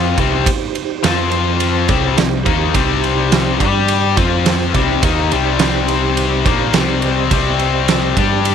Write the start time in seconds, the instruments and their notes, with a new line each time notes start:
Already playing: picked electric bass F2, distorted electric guitar F3 C4 F4, tonewheel organ C4 F4 C5
0.18 picked electric bass C2, distorted electric guitar C3 G3 C4, tonewheel organ D#4 G4 C5, kick, ride
0.46 kick, ride
0.75 ride
1.03 picked electric bass F2, distorted electric guitar F3 C4 F4, tonewheel organ C4 F4 C5, snare, ride
1.31 ride
1.60 ride
1.88 picked electric bass C2, distorted electric guitar C3 G3 C4, tonewheel organ E4 G#4 C#5, kick, ride
2.10 tonewheel organ D#4 G4 C5
2.18 picked electric bass C2, distorted electric guitar C3 G3, snare, ride
2.45 picked electric bass D#2, distorted electric guitar D#3 A#3 D#4, kick, ride
2.74 picked electric bass C2, distorted electric guitar C3 G3 C4, kick, ride
3.04 ride
3.32 snare, ride
3.60 picked electric bass G2, distorted electric guitar G3 D4 G4, tonewheel organ D4 G4 D5, kick, ride
3.88 ride
4.17 picked electric bass F2, distorted electric guitar F3 C4 F4, tonewheel organ C4 F4 C5, kick, ride
4.46 snare, ride
4.61 snare
4.75 picked electric bass C2, distorted electric guitar C3 G3 C4, tonewheel organ D#4 G4 C5, kick, ride
5.03 picked electric bass D#2, distorted electric guitar D#3 A#3 D#4, kick, ride
5.31 picked electric bass C2, distorted electric guitar C3 G3 C4, ride
5.59 snare, ride
5.88 ride
6.17 ride
6.46 picked electric bass A#1, distorted electric guitar A#2 F3 A#3, kick, ride
6.73 picked electric bass C2, distorted electric guitar C3 G3 C4, snare, ride
7.02 tonewheel organ G4 C5 D#5, ride
7.31 picked electric bass C2, distorted electric guitar C3 G3 C4, kick, ride
7.59 ride
7.88 snare, ride
8.17 picked electric bass G2, distorted electric guitar G3 D4 G4, tonewheel organ D4 G4 D5, kick, ride
8.45 ride